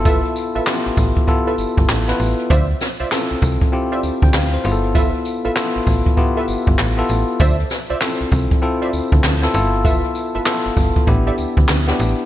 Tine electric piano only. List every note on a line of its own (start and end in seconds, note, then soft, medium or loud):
0.00 0.51 B3 medium
0.00 0.52 E4 medium
0.00 0.52 F4 medium
0.00 0.52 A4 loud
0.66 1.12 B3 medium
0.66 1.13 E4 medium
0.66 1.13 F4 medium
0.66 1.13 G4 loud
1.27 1.83 B3 medium
1.27 1.83 E4 medium
1.27 1.83 F4 medium
1.27 1.84 A4 medium
2.08 2.50 B3 medium
2.08 2.50 E4 medium
2.08 2.50 F4 medium
2.08 2.51 B4 medium
3.11 3.57 C4 medium
3.11 3.58 E4 medium
3.11 3.58 F4 medium
3.11 3.58 A4 loud
3.72 4.28 C4 medium
3.72 4.28 E4 medium
3.72 4.28 F4 medium
3.72 4.29 G4 loud
4.23 4.33 G5 medium
4.34 4.53 F5 medium
4.54 4.83 C5 medium
4.64 5.41 B3 medium
4.64 5.41 E4 medium
4.64 5.41 F4 medium
4.64 4.73 G#4 medium
4.72 5.45 A4 loud
5.56 6.02 B3 medium
5.56 6.03 E4 medium
5.56 6.03 F4 medium
5.56 6.03 A4 loud
6.17 6.73 B3 medium
6.17 6.73 E4 medium
6.17 6.73 F4 medium
6.17 6.73 G4 loud
6.98 7.40 B3 medium
6.98 7.40 E4 medium
6.98 7.40 F4 medium
6.98 7.40 A4 loud
8.01 8.47 C4 medium
8.01 8.47 E4 medium
8.01 8.47 F4 medium
8.01 8.48 A4 loud
8.62 9.18 C4 medium
8.62 9.18 E4 medium
8.62 9.18 F4 medium
8.62 9.18 A4 medium
9.42 9.54 C4 medium
9.42 9.53 E4 medium
9.42 9.53 F4 medium
9.42 9.54 A4 loud
9.54 10.31 B3 medium
9.54 10.31 E4 medium
9.54 10.31 F4 medium
9.54 10.31 A4 medium
10.45 10.92 B3 medium
10.45 10.92 E4 medium
10.45 10.92 F4 medium
10.45 10.92 A4 loud
11.07 11.63 B3 medium
11.07 11.63 D4 medium
11.07 11.63 E4 medium
11.07 11.63 G4 loud
11.88 12.26 B3 medium
11.88 12.26 D4 medium
11.88 12.26 E4 medium
11.88 12.26 G4 loud